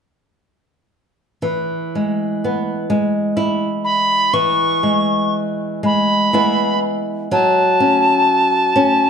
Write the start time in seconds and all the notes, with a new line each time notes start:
1.42 E3
1.95 G#3
2.44 B3
2.90 G#3
3.37 E4
3.84 B5
4.33 E3 C#6
4.83 G#3
5.83 G#3 B5
6.33 G#3 B3 E4
7.31 F#3 A5
7.80 C#4
8.76 C#4